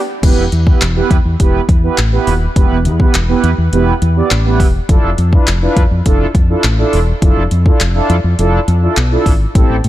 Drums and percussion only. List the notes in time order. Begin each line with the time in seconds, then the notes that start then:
0.23 kick, closed hi-hat, crash
0.52 closed hi-hat
0.67 kick
0.81 clap, closed hi-hat
1.11 kick, closed hi-hat
1.40 kick, closed hi-hat
1.69 kick, closed hi-hat
1.98 clap, closed hi-hat
2.27 open hi-hat
2.56 kick, closed hi-hat
2.85 closed hi-hat
3.00 kick
3.14 clap, closed hi-hat
3.44 closed hi-hat
3.73 closed hi-hat
4.02 closed hi-hat
4.31 clap, closed hi-hat
4.60 kick, open hi-hat
4.89 kick, closed hi-hat
5.18 closed hi-hat
5.33 kick
5.47 clap, closed hi-hat
5.77 kick, closed hi-hat
6.06 kick, closed hi-hat
6.35 kick, closed hi-hat
6.64 clap, closed hi-hat
6.93 open hi-hat
7.22 kick, closed hi-hat
7.51 closed hi-hat
7.66 kick
7.80 clap, closed hi-hat
8.10 closed hi-hat
8.39 closed hi-hat
8.68 closed hi-hat
8.97 clap, closed hi-hat
9.26 kick, open hi-hat
9.55 kick, closed hi-hat
9.84 closed hi-hat